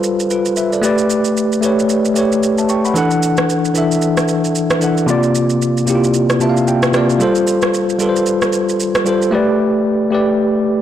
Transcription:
Already playing: tine electric piano G3 F4 A4 B4 C5
0.03 shaker
0.20 shaker
0.30 tine electric piano F4 B4, shaker
0.45 shaker
0.57 tine electric piano B4 E5, shaker
0.73 tine electric piano A4 D5, shaker
0.82 tine electric piano A3 G4 B4 D5, shaker
0.98 shaker
1.10 shaker
1.25 shaker
1.37 shaker
1.52 shaker
1.61 tine electric piano A3 G4 B4 C#5, shaker
1.79 shaker
1.89 shaker
2.05 shaker
2.14 tine electric piano A3 G4 B4, shaker
2.18 tine electric piano C#5
2.32 shaker
2.43 shaker
2.58 tine electric piano E5 A5, shaker
2.69 tine electric piano G5 C#6, shaker
2.85 tine electric piano F#5 B5, shaker
2.94 tine electric piano E3 D4 A4, shaker
2.98 tine electric piano F#5
3.11 shaker
3.23 shaker
3.37 cross-stick, shaker
3.50 shaker
3.65 shaker
3.74 tine electric piano E3 D4 A4 E5, shaker
3.92 shaker
4.02 shaker
4.17 cross-stick, shaker
4.28 shaker
4.45 shaker
4.55 shaker
4.70 cross-stick, shaker
4.80 tine electric piano E3 D4 A4, shaker
4.84 tine electric piano F#5
4.97 shaker
5.06 tine electric piano C3 A#3 F4 D5, shaker
5.23 shaker
5.35 shaker
5.50 shaker
5.62 shaker
5.77 shaker
5.86 tine electric piano C3 A#3 E4 G4, shaker
5.95 tine electric piano F4
6.04 shaker
6.14 shaker
6.30 cross-stick, shaker
6.39 tine electric piano C3 A#3 F4 E5 A5, shaker
6.49 tine electric piano F5
6.57 shaker
6.68 tine electric piano G5, shaker
6.83 cross-stick, shaker
6.92 tine electric piano C3 A#3 F4 D5 F5, cross-stick, shaker
7.10 shaker
7.19 tine electric piano G3 F4 A4 C5, shaker
7.35 shaker
7.47 shaker
7.62 cross-stick, shaker
7.74 shaker
7.90 shaker
7.99 tine electric piano G3 F4 A4 B4, shaker
8.09 tine electric piano C5
8.16 shaker
8.26 shaker
8.42 cross-stick, shaker
8.53 shaker
8.69 shaker
8.80 shaker
8.95 cross-stick, shaker
9.05 tine electric piano G3 F4 A4 C5, shaker
9.22 shaker
9.31 tine electric piano A3 G4 B4 D5
10.11 tine electric piano A3 G4 B4
10.15 tine electric piano D5

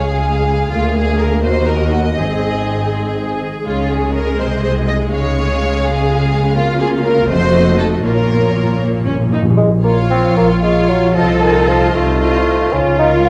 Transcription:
Already playing: cello section C#2, double bass section C#2, harp C#3 G#3 F4, viola section G#3 G#4, violin section G#4 F5
0.00 harp G#4
0.22 harp F4
0.47 harp C#4
0.71 double bass section D2, cello section D2, harp D3, viola section A#3 G#4, violin section F4
0.95 harp G#3, violin section G#4
1.19 harp F4 A#4, violin section A#4
1.43 cello section D#2, double bass section D#2, harp D#3, viola section F#4, violin section C5 D#5
1.68 harp D#4, violin section A#4
1.93 harp D#4 A#4, violin section F#4
2.17 double bass section G#1, cello section G#2, harp G#2, viola section C4 G#4, violin section G#4
2.42 harp G#3
2.67 harp D#4
2.92 harp G#4
3.16 harp D#4
3.41 harp D#3
3.66 double bass section C#2, harp C#3, cello section C#3, viola section G#3, violin section F4 C#5
3.90 harp C#4, violin section G#4
4.15 harp C#4 G#4, violin section A#4
4.40 double bass section C2, cello section C3, harp C3, violin section C5 D#5
4.64 harp G#3, violin section C5
4.88 harp D#4 G#4, violin section D#5
5.12 double bass section C#2, cello section C#3, harp C#3, viola section G#4, violin section C#5 F5
5.37 harp C#4
5.61 harp F4
5.84 violin section G#4, harp C#5
6.08 harp F4
6.32 harp G#3
6.56 harp C#3, viola section A#3 F4, violin section F4
6.80 harp C#4, violin section G#4
7.04 harp C#4 F4, violin section A#4
7.29 double bass section F1, cello section F2, harp F3, viola section A3 F#4, violin section C5 D#5
7.54 harp D#4
7.79 harp D#4 F#4, violin section A4
8.04 double bass section A#1, harp A#2, timpani A#2, cello section A#2, viola section A#3 F4, violin section A#4 C#5
8.12 timpani A#2
8.19 timpani A#2
8.26 timpani A#2
8.31 timpani A#2, harp A#3
8.41 timpani A#2
8.49 timpani A#2
8.56 timpani A#2, harp C#4
8.63 timpani A#2
8.71 timpani A#2
8.78 timpani A#2, harp A#4
8.83 timpani A#2, viola section A#3
8.92 timpani A#2
8.99 timpani A#2
9.07 timpani A#2, harp C#4, viola section C#4
9.14 timpani A#2
9.21 timpani A#2
9.28 timpani A#2, harp F3
9.33 timpani A#2, viola section D#4
9.43 timpani A#2
9.50 timpani A#2
9.57 double bass section A#1, harp A#2, bassoon G#3
9.84 bassoon A#3, harp C#4, viola section F4, violin section C#5 F5
10.10 harp F3, bassoon C4
10.37 double bass section A#1, bassoon A#3, cello section F4, harp C#5
10.63 bassoon G#3, harp C#4, viola section F4, violin section C#5 F5
10.89 harp F3, bassoon F#3
11.15 double bass section C2, harp C3, bassoon F3, viola section F4, cello section A4, violin section C5 D#5
11.42 bassoon D#3, harp C4, viola section F4, violin section C5 D#5
11.68 bassoon F3, harp D#4
11.94 double bass section C2, bassoon A3, cello section F4, harp C5
12.20 harp D#4, viola section F4, violin section C5 D#5
12.72 double bass section C#2, harp C#3, bassoon C#4, cello section F4
12.99 harp C#4, bassoon D#4, viola section F4, violin section A#4 C#5
13.25 bassoon F4, harp F4

